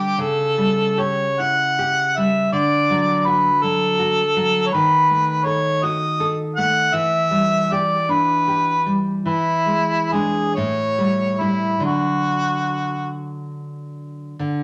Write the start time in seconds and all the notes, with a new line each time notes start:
Already playing: D3 G3 G4
0.18 C#3 A4
0.58 G3
0.98 G4 C#5
1.40 E4 F#5
1.79 G4
2.17 G3 E5
2.52 D3 D5
2.90 F#3
3.25 F#4 B4
3.62 F#3 A4
3.99 F#4
4.36 F#3
4.67 C#5
4.73 D#3 B4
5.10 A3
5.45 A4 C#5
5.83 F#4 D#5
6.20 A4
6.56 A3 F#5
6.93 E3 E5
7.31 G3
7.72 G4 D5
8.09 D4 B4
8.48 G4
8.86 G3
9.25 E3 E4
9.66 G#3
10.12 G#3 D4 G#4
10.55 A2 C#5
10.98 G3
11.40 G3 E4
11.80 D3 F#3 D4
11.85 F#4
14.39 D3